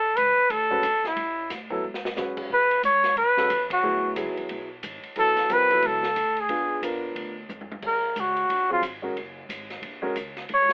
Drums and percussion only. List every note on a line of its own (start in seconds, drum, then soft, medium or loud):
0.17 hi-hat pedal medium
0.17 ride medium
0.50 ride medium
0.83 hi-hat pedal medium
0.83 ride medium
1.04 snare soft
1.17 ride medium
1.50 snare soft
1.50 hi-hat pedal medium
1.50 ride medium
1.70 kick soft
1.94 snare medium
2.05 snare medium
2.16 snare medium
2.16 hi-hat pedal soft
2.37 kick medium
2.37 crash medium
2.71 ride soft
2.83 hi-hat pedal medium
2.83 ride medium
3.04 snare soft
3.04 ride soft
3.17 ride medium
3.37 snare medium
3.50 hi-hat pedal medium
3.50 ride medium
3.70 kick medium
3.70 ride medium
4.16 hi-hat pedal medium
4.16 ride medium
4.37 ride soft
4.49 ride medium
4.83 hi-hat pedal medium
4.83 ride medium
5.03 ride soft
5.16 ride medium
5.37 snare soft
5.37 ride medium
5.50 hi-hat pedal medium
5.50 ride medium
5.70 kick soft
5.70 ride soft
5.82 ride medium
6.03 snare medium
6.16 hi-hat pedal soft
6.16 ride medium
6.37 ride soft
6.49 ride medium
6.83 hi-hat pedal medium
6.83 ride medium
7.16 ride medium
7.49 hi-hat pedal medium
7.49 high tom soft
7.61 high tom medium
7.72 high tom medium
7.82 kick medium
7.82 crash medium
8.16 hi-hat pedal medium
8.16 ride medium
8.37 ride soft
8.50 ride medium
8.83 hi-hat pedal medium
8.83 ride medium
9.17 ride medium
9.50 hi-hat pedal medium
9.50 ride medium
9.70 snare soft
9.70 ride soft
9.83 ride medium
10.16 hi-hat pedal medium
10.16 ride medium
10.37 snare soft
10.37 ride soft
10.49 ride medium
10.69 snare soft